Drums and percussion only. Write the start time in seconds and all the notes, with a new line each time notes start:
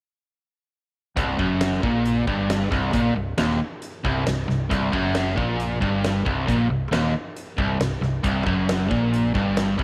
1.17 kick, closed hi-hat
1.39 kick
1.61 snare, closed hi-hat
1.72 snare
1.83 kick
2.05 closed hi-hat
2.27 kick
2.50 snare, closed hi-hat
2.72 kick, snare
2.93 kick, closed hi-hat
3.38 snare, closed hi-hat
3.50 snare
3.82 closed hi-hat
4.05 kick
4.27 snare, closed hi-hat
4.49 snare
4.71 kick, closed hi-hat
4.93 kick
5.15 snare, closed hi-hat
5.38 kick
5.60 closed hi-hat
5.82 kick
6.04 snare, closed hi-hat
6.26 kick
6.48 kick, closed hi-hat
6.93 snare, closed hi-hat
7.37 closed hi-hat
7.58 kick
7.81 snare, closed hi-hat
8.02 snare
8.24 kick, closed hi-hat
8.47 kick
8.69 snare, closed hi-hat
8.91 kick
9.14 closed hi-hat
9.35 kick
9.57 snare, closed hi-hat
9.79 kick